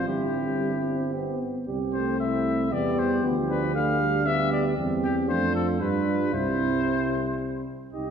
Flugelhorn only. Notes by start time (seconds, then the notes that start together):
0.08 E4
1.13 G4
1.67 G4
2.19 E4
2.72 G4
4.25 G4
4.77 G4
5.29 F4
5.80 F4
6.33 E4
7.93 G4